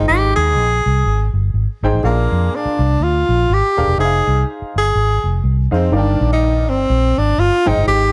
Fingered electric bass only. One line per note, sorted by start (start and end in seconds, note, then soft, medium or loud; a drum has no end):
0.09 0.32 G#1 loud
0.37 0.58 D#2 medium
0.58 0.80 A#1 medium
0.86 1.02 C2 medium
1.06 1.29 G#1 medium
1.34 1.50 G1 medium
1.54 1.66 G#1 medium
1.83 1.91 G#1 medium
1.93 2.02 A1 medium
2.04 2.26 A#1 medium
2.32 2.48 F2 medium
2.65 muted fingered electric bass stroke soft
2.79 2.96 C2 medium
3.00 3.23 D2 medium
3.29 3.45 A#1 medium
3.50 3.61 G#1 medium
3.78 3.86 D#1 medium
3.87 3.96 E1 medium
3.98 4.20 F1 loud
4.27 4.43 C2 medium
4.62 muted fingered electric bass stroke soft
4.76 4.92 G1 medium
4.95 5.18 G#1 medium
5.24 5.40 F1 medium
5.44 5.66 C2 medium
5.72 5.88 F2 medium
5.92 6.15 G1 loud
6.21 6.70 A#1 medium
6.70 6.86 G1 medium
6.90 7.12 A#1 medium
7.18 7.34 G#1 medium
7.38 7.49 G1 medium
7.67 7.75 G#1 medium
7.77 7.85 G1 medium
7.87 8.10 G#1 loud